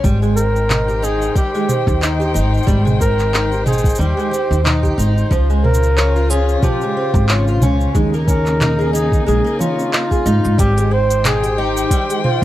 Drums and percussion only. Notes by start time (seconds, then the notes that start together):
0.04 kick, cabasa
0.23 cabasa
0.37 cabasa
0.56 cabasa
0.70 clap, mid tom, cabasa
0.89 cabasa
1.04 cabasa
1.22 cabasa
1.36 kick, cabasa
1.55 cabasa
1.69 mid tom, cabasa
1.87 kick, cabasa
2.02 clap, cabasa
2.21 cabasa
2.35 cabasa
2.54 cabasa
2.57 cabasa
2.63 cabasa
2.67 kick, cabasa
2.87 mid tom, cabasa
3.00 kick, cabasa
3.19 clap, cabasa
3.34 clap, cabasa
3.52 cabasa
3.66 mid tom, cabasa
3.73 cabasa
3.78 cabasa
3.84 kick, cabasa
3.89 cabasa
3.95 cabasa
4.19 cabasa
4.34 cabasa
4.52 cabasa
4.66 clap, mid tom, cabasa
4.83 kick, cabasa
4.99 cabasa
5.18 cabasa
5.31 kick, cabasa
5.50 cabasa
5.65 mid tom
5.74 cabasa
5.83 cabasa
5.98 clap, cabasa
6.16 cabasa
6.30 cabasa
6.49 cabasa
6.62 kick, mid tom, cabasa
6.81 cabasa
7.14 kick, cabasa
7.29 clap, cabasa
7.48 cabasa
7.62 mid tom, cabasa
7.81 cabasa
7.95 kick, cabasa
8.14 cabasa
8.28 kick, cabasa
8.46 clap, cabasa
8.61 clap, mid tom, cabasa
8.80 cabasa
8.95 cabasa
9.12 kick, cabasa
9.28 cabasa
9.46 cabasa
9.61 mid tom, cabasa
9.79 cabasa
9.93 clap, cabasa
10.11 kick, cabasa
10.26 cabasa
10.45 cabasa
10.59 kick, open hi-hat, cabasa
10.78 open hi-hat, cabasa
11.10 open hi-hat, cabasa
11.25 clap, mid tom, open hi-hat, cabasa
11.44 open hi-hat, cabasa
11.77 cabasa
11.91 kick, open hi-hat, cabasa
12.10 open hi-hat, cabasa
12.24 mid tom